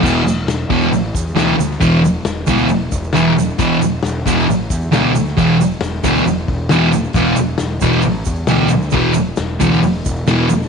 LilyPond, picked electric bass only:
\new Staff \with { instrumentName = "Picked electric bass" } { \clef bass \time 4/4 \key c \lydian \tempo 4 = 135 e,,8 e,,8 e,,8 e,,8 a,,8 e,8 d,8 d,8 | e,,4 e,,8 d,8 e,,8 e,,8 e,,4 | e,,8 e,,8 e,,8 e,,8 a,,8 e,8 d,8 d,8 | e,,4 e,,8 d,8 e,,8 e,,8 e,,4 |
e,,8 e,,8 e,,8 e,,8 a,,8 e,8 d,8 d,8 | e,,4 e,,8 d,8 e,,8 e,,8 e,,4 | }